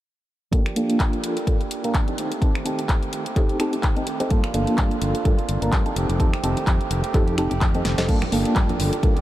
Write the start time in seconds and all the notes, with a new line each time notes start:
0.52 F3 A#3 D4 F4 G4 A4, kick, closed hi-hat
0.66 finger snap, closed hi-hat
0.75 F3 A#3 D4 F4 G4 A4, closed hi-hat
0.90 closed hi-hat
1.00 G4, kick, clap, closed hi-hat
1.13 closed hi-hat
1.23 F3 A#3 D4 G4, closed hi-hat
1.36 A#3 D4 G4, closed hi-hat
1.47 A#3 D4 F4 A4, kick, closed hi-hat
1.60 A#3 D4 G4, closed hi-hat
1.71 closed hi-hat
1.83 A#3 D4 F4 G4 A#4, closed hi-hat
1.94 F3 G4, kick, clap, closed hi-hat
2.08 C4 D#4 G4 A4, closed hi-hat
2.17 D#3 A3 C4 G4, closed hi-hat
2.31 A3 C4 G4, closed hi-hat
2.41 D#3 A3 C4 D#4 G4 A4, kick, closed hi-hat
2.55 finger snap, closed hi-hat
2.64 D#3 A3 C4 D#4 G4 A4, closed hi-hat
2.79 closed hi-hat
2.88 D#3, kick, clap, closed hi-hat
3.03 closed hi-hat
3.12 D#3 A3 C4 G4, closed hi-hat
3.25 A3 C4 G4, closed hi-hat
3.36 C4 D#4 G4 A4, kick, clap, closed hi-hat
3.49 A3 C4 G4, closed hi-hat
3.60 C4 D#4 G4 A4, finger snap, closed hi-hat
3.73 A3 C4 G4, closed hi-hat
3.83 D#3 A3, kick, clap, closed hi-hat
3.96 C4 D#4 G4 A4, closed hi-hat
4.06 D#3 A3 C4 G4, closed hi-hat
4.20 A3 C4 D#4 G4 A4, closed hi-hat
4.30 G2 F3 A#3 D4 F4 A4, kick, closed hi-hat
4.44 finger snap, closed hi-hat
4.53 G1 F3 A#3 D4 F4 A4, closed hi-hat
4.67 muted fingered electric bass stroke, closed hi-hat
4.78 G2 D4 F4, kick, clap, closed hi-hat
4.91 closed hi-hat
5.01 G1 F3 A#3 D4 F4, closed hi-hat
5.14 A#3 D4 F4, closed hi-hat
5.25 G2 A#3 D4 F4 A4, kick, closed hi-hat
5.38 A#3 D4 F4, closed hi-hat
5.49 G1, closed hi-hat
5.61 G1 A#3 D4 F4 A#4, closed hi-hat
5.72 G2 F3 A#3 D4 F4, kick, clap, closed hi-hat
5.85 C4 D#4 G4 A4, closed hi-hat
5.95 F1 D#3 A3 C4 G4, closed hi-hat
6.08 F1 A3 C4 G4, closed hi-hat
6.19 F2 D#3 A3 C4 D#4 G4 A4, kick, closed hi-hat
6.34 finger snap, closed hi-hat
6.43 F1 D#3 A3 C4 D#4 G4 A4, closed hi-hat
6.57 muted fingered electric bass stroke, closed hi-hat
6.67 F2 C4 G4, kick, clap, closed hi-hat
6.81 closed hi-hat
6.89 F1 D#3 A3 C4 G4, closed hi-hat
7.03 A3 C4 G4, closed hi-hat
7.14 F2 C4 D#4 G4 A4, kick, clap, closed hi-hat
7.26 A3 C4 G4, closed hi-hat
7.38 F1 C4 D#4 G4 A4, finger snap, closed hi-hat
7.50 F1 A3 C4 G4, closed hi-hat
7.61 F2 D#3 A3 C4 G4, kick, clap, closed hi-hat
7.75 C4 D#4 G4 A4, closed hi-hat
7.84 F1 D#3 A3 C4 G4, snare, closed hi-hat
7.97 F1 A3 C4 D#4 G4 A4, snare, closed hi-hat
8.08 G2 F3 A#3 D4 F4 G4 A4, kick, closed hi-hat, crash
8.22 finger snap, closed hi-hat, low conga
8.32 G1 A#3 D4 F4 A4, open hi-hat, shaker
8.45 A#3 D4 G4, muted fingered electric bass stroke, closed hi-hat, shaker
8.55 G2 F3 A#3 D4 G4, kick, clap, closed hi-hat, shaker
8.69 closed hi-hat, low conga, shaker
8.79 G1, open hi-hat, high conga, shaker
8.92 A#3 D4 G4, closed hi-hat, shaker
9.03 G2 A#3 D4 F4 A4, kick, closed hi-hat
9.15 D4 G4, closed hi-hat, low conga, shaker